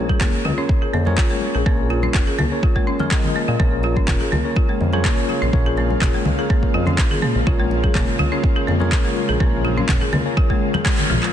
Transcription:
Already playing: A#1 C#4 F4 G#4 A#4 C#5
0.09 G#4, kick, high conga
0.21 F1 A#3, kick, clap
0.34 muted conga
0.45 C#2 F4, high conga, low conga
0.58 C#4 F4 G#4 A#4 C#5
0.69 kick, muted conga
0.82 G#4
0.93 F2 A#3, low conga
1.05 C#4 F4 G#4 A#4 C#5, muted conga, high conga
1.18 A#1 F4, kick, clap
1.30 G#3
1.41 muted conga
1.55 A#1 G#4
1.66 A#1 A#3 C#4 F4 G#4 A#4 C#5, kick
1.90 F4, muted conga
2.03 C#4, high conga
2.14 F1, kick, clap
2.27 G#4, muted conga
2.38 C#2 A#3, high conga, low conga
2.52 C#4 F4 G#4 A#4 C#5
2.63 F4, kick, muted conga
2.76 G#3, kick
2.87 C#4
2.99 F3 C#4 F4 G#4 A#4 C#5, muted conga, high conga, low conga
3.11 G#3 F4, kick, clap
3.24 high conga, low conga
3.36 A#3, muted conga
3.48 A#2 F4
3.59 A#1 C#3 G#3 A#3 C#4 F4 G#4 A#4 C#5, kick, mid tom
3.83 F4, muted conga
3.96 C#4, kick, high conga
4.08 F1, kick, clap, mid tom
4.21 G#4, muted conga
4.32 C#2 A#3, high conga, low conga
4.45 C#4 F4 G#4 A#4 C#5
4.56 F4, kick, muted conga
4.69 G#3
4.80 F2, low conga
4.93 C#4 F4 G#4 A#4 C#5, muted conga, high conga
5.05 A#1 A#3, kick, clap
5.29 F4, muted conga
5.42 A#1 C#4
5.53 A#1 C#4 F4 G#4 A#4 C#5, kick, mid tom
5.66 G#4
5.77 A#3, muted conga
5.90 high conga
6.02 F1 F4, kick, clap, mid tom
6.14 G#3, muted conga
6.25 C#2, high conga, low conga
6.39 C#4 F4 G#4 A#4 C#5
6.50 A#3, kick, muted conga
6.63 kick
6.74 F2 F4
6.86 C#4, muted conga, high conga, low conga
6.98 A#1, kick, clap
7.11 G#4, high conga, low conga
7.21 A#3, mid tom, muted conga
7.35 A#1
7.47 A#1 C#4 F4 G#4 A#4 C#5, kick, mid tom
7.60 G#3
7.71 muted conga
7.84 G#4, kick, high conga
7.95 F1 A#3, kick, clap, mid tom
8.08 muted conga
8.19 C#2 F4, high conga, low conga
8.32 C#4 F4 G#4 A#4 C#5
8.44 kick, muted conga
8.56 G#4
8.67 F2 A#3, low conga
8.80 C#4 F4 G#4 A#4 C#5, muted conga, high conga
8.92 A#1 F4, kick, clap
9.04 G#3
9.17 muted conga
9.29 A#1 G#4
9.40 A#1 A#3 C#4 F4 G#4 A#4 C#5, kick, mid tom
9.65 F4, muted conga
9.78 C#4, high conga
9.89 F1, kick, clap, mid tom
10.01 G#4, muted conga
10.13 C#2 A#3, high conga, low conga
10.26 C#4 F4 G#4 A#4 C#5
10.37 F4, kick, muted conga
10.50 G#3, kick
10.74 G#4, muted conga, high conga, low conga
10.86 G#3, kick, clap
10.99 high conga, low conga
11.10 A#1 F3, mid tom, muted conga, low conga
11.22 F4, clap

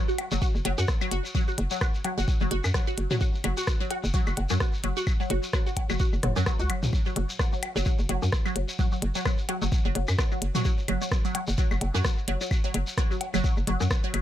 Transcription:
0.08 F#4, shekere
0.18 closed hi-hat, claves, low woodblock
0.31 F#1 F#3, shekere
0.42 F#4, kick, shekere
0.55 F#1, shekere
0.65 F#1 F#3, closed hi-hat, low woodblock
0.78 F#2 F#4, shekere
0.88 kick, cross-stick, shekere
1.01 F#3, claves, shekere
1.11 F#1 F#4, closed hi-hat
1.25 shekere
1.35 F#3, kick, shekere
1.48 F#4, shekere
1.58 F#1, closed hi-hat
1.71 F#3, shekere
1.81 F#4, kick, cross-stick, claves, shekere
1.95 shekere
2.04 F#3, closed hi-hat, low woodblock
2.18 F#1 F#4, shekere
2.28 kick, shekere
2.40 F#1 F#3, shekere
2.51 F#1 F#4, closed hi-hat
2.64 F#2, claves, shekere
2.74 F#3, kick, cross-stick, shekere
2.87 F#4, shekere
2.98 F#1, closed hi-hat
3.11 F#3, mid tom, shekere
3.21 F#4, kick, shekere
3.35 shekere
3.44 F#1 F#3, closed hi-hat, claves
3.57 F#4, shekere
3.67 kick, cross-stick, shekere
3.80 F#3, shekere
3.91 F#4, closed hi-hat, low woodblock
4.04 F#1, shekere
4.14 F#3, kick, shekere
4.26 F#1 F#4, claves, shekere
4.37 F#1, closed hi-hat, low woodblock
4.49 F#2 F#3, shekere
4.60 F#4, kick, cross-stick, shekere
4.74 shekere
4.84 F#1 F#3, closed hi-hat
4.97 F#4, shekere
5.07 kick, claves, shekere
5.20 F#3, shekere
5.30 F#1 F#4, closed hi-hat
5.43 shekere
5.53 F#3, kick, cross-stick, shekere
5.67 F#4, shekere
5.77 kick, closed hi-hat, low woodblock
5.90 F#1 F#3, claves, shekere
5.99 F#4, kick, shekere
6.13 F#1, shekere
6.23 F#1 F#3, cross-stick, closed hi-hat, mid tom
6.36 F#2 F#3, shekere
6.46 F#3, kick, cross-stick, shekere
6.59 C#2 F#4, shekere
6.70 F#1 F#3, closed hi-hat, claves
6.83 C#2, mid tom, shekere
6.93 kick, shekere
7.05 F#3, shekere
7.16 F#1 F#3, closed hi-hat
7.29 shekere
7.39 F#3, kick, cross-stick, shekere
7.53 F#3, shekere
7.63 closed hi-hat, claves, low woodblock
7.76 F#1 F#3, shekere
7.85 F#3, kick, shekere
7.99 F#1, shekere
8.09 F#1 F#3, closed hi-hat, low woodblock
8.22 F#2 F#3, shekere
8.32 kick, cross-stick, shekere
8.46 F#3, claves, shekere
8.56 F#1 F#3, closed hi-hat
8.69 shekere
8.79 F#3, kick, shekere
8.92 F#3, shekere
9.02 F#1, closed hi-hat
9.15 F#3, shekere
9.25 F#3, kick, cross-stick, claves, shekere
9.38 shekere
9.49 F#3, closed hi-hat, low woodblock
9.62 F#1 F#3, shekere
9.72 kick, shekere
9.85 F#1 F#3, shekere
9.95 F#1 F#3, closed hi-hat
10.08 F#2, claves, shekere
10.19 F#3, kick, cross-stick, shekere
10.31 F#3, shekere
10.42 F#1, closed hi-hat
10.55 F#3, mid tom, shekere
10.65 F#3, kick, shekere
10.78 shekere
10.88 F#1 F#3, closed hi-hat, claves
11.01 F#3, shekere
11.12 kick, cross-stick, shekere
11.25 F#3, shekere
11.35 F#3, closed hi-hat, low woodblock
11.47 F#1, shekere
11.57 F#3, kick, shekere
11.71 F#1 F#3, claves, shekere
11.81 F#1, closed hi-hat, low woodblock
11.94 F#2 F#3, shekere
12.05 F#3, kick, cross-stick, shekere
12.18 shekere
12.28 F#1 F#3, closed hi-hat
12.41 F#3, shekere
12.51 kick, claves, shekere
12.64 F#3, shekere
12.74 F#1 F#3, closed hi-hat
12.87 shekere
12.97 F#3, kick, cross-stick, shekere
13.11 F#3, shekere
13.21 closed hi-hat, low woodblock
13.34 F#1 F#3, claves, shekere
13.44 F#3, kick, shekere
13.57 F#1, shekere
13.67 F#1 F#3, closed hi-hat
13.80 F#2 F#3, shekere
13.91 kick, cross-stick, shekere
14.03 F#3, shekere
14.14 F#1 F#3, closed hi-hat, claves

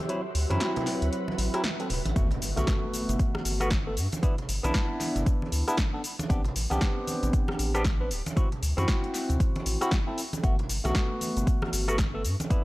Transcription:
Already playing: F#4 E5
0.09 F#3 C4 E4, closed hi-hat
0.26 B4
0.35 D2, open hi-hat
0.49 F#2 F#3 C4 E4, cross-stick, closed hi-hat, high conga
0.60 snare, closed hi-hat
0.76 closed hi-hat, low conga
0.86 snare, open hi-hat
1.02 D2, closed hi-hat
1.13 closed hi-hat
1.28 high conga
1.38 A1, open hi-hat
1.53 F#3 C4 E4, cross-stick, closed hi-hat
1.64 snare, closed hi-hat, high conga
1.79 F#3 C4 A4, closed hi-hat
1.90 D1, open hi-hat, low conga
2.05 A1, closed hi-hat, high conga
2.16 G1 A3 B3 F#4, kick, closed hi-hat, impact, shaker
2.31 closed hi-hat, low conga
2.42 G1, open hi-hat, shaker
2.56 B1 A3 B3 F#4, cross-stick, closed hi-hat, high conga, shaker
2.67 kick, snare, closed hi-hat, shaker
2.94 open hi-hat, shaker
3.09 G1, closed hi-hat, low conga, shaker
3.19 kick, closed hi-hat, shaker
3.35 cross-stick, high conga
3.45 G1, open hi-hat, shaker
3.60 A3 B3 F#4, cross-stick, closed hi-hat, shaker
3.71 kick, snare, closed hi-hat, high conga, shaker
3.86 A3 B3 A4
3.97 G2, open hi-hat, shaker
4.12 closed hi-hat, high conga, shaker
4.23 B3 D4 E4, kick, closed hi-hat, shaker
4.38 closed hi-hat, low conga
4.49 G1, open hi-hat, shaker
4.63 B1 B3 D4 E4, cross-stick, closed hi-hat, high conga, shaker
4.74 kick, snare, closed hi-hat, shaker
5.00 snare, open hi-hat, high conga, shaker
5.16 G1, closed hi-hat, low conga, shaker
5.26 kick, closed hi-hat, shaker
5.42 high conga
5.52 D2, open hi-hat, shaker
5.67 B3 D4 E4, cross-stick, closed hi-hat, shaker
5.77 kick, snare, closed hi-hat, high conga, shaker
5.93 B3 D4 A4
6.04 open hi-hat, shaker
6.19 closed hi-hat, high conga, shaker
6.29 A1 B3 C4 D4 G4, kick, closed hi-hat, shaker
6.44 closed hi-hat, low conga
6.56 A1, open hi-hat, shaker
6.70 C2 B3 C4 D4 G4, cross-stick, closed hi-hat, high conga, shaker
6.81 kick, snare, closed hi-hat, shaker
7.07 open hi-hat, high conga, shaker
7.23 A1, closed hi-hat, low conga, shaker
7.33 kick, closed hi-hat, shaker
7.48 cross-stick, high conga
7.59 A1, open hi-hat, shaker
7.74 B3 C4 D4 G4, cross-stick, closed hi-hat, shaker
7.84 kick, snare, closed hi-hat, high conga, shaker
8.00 B3 C4 D4 B4
8.11 D1, open hi-hat, shaker
8.26 closed hi-hat, high conga, shaker
8.36 C4 E4 F#4, kick, closed hi-hat, shaker
8.52 closed hi-hat, low conga
8.63 D2, open hi-hat, shaker
8.77 F#2 C4 E4 F#4, cross-stick, closed hi-hat, high conga, shaker
8.88 kick, snare, closed hi-hat, shaker
9.04 closed hi-hat
9.14 snare, open hi-hat, shaker
9.29 D2, closed hi-hat, low conga, shaker
9.40 kick, closed hi-hat, shaker
9.56 closed hi-hat, high conga
9.66 A1, open hi-hat, shaker
9.81 C4 E4 F#4, cross-stick, closed hi-hat, shaker
9.91 kick, snare, closed hi-hat, high conga, shaker
10.07 C4 E4 A4
10.18 open hi-hat, shaker
10.33 closed hi-hat, high conga, shaker
10.43 G1 A3 B3 F#4, kick, closed hi-hat, shaker
10.59 closed hi-hat, low conga
10.69 G1, open hi-hat, shaker
10.84 B1 A3 B3 F#4, cross-stick, closed hi-hat, high conga, shaker
10.95 kick, snare, closed hi-hat, shaker
11.21 open hi-hat, high conga, shaker
11.37 G1, closed hi-hat, low conga, shaker
11.47 kick, closed hi-hat, shaker
11.62 cross-stick, high conga
11.73 G1, open hi-hat, shaker
11.88 A3 B3 F#4, cross-stick, closed hi-hat, shaker
11.98 kick, snare, closed hi-hat, high conga, shaker
12.14 A3 B3 A4
12.25 G2, open hi-hat, shaker
12.40 closed hi-hat, high conga, shaker
12.50 B3 D4 E4, kick, closed hi-hat, shaker

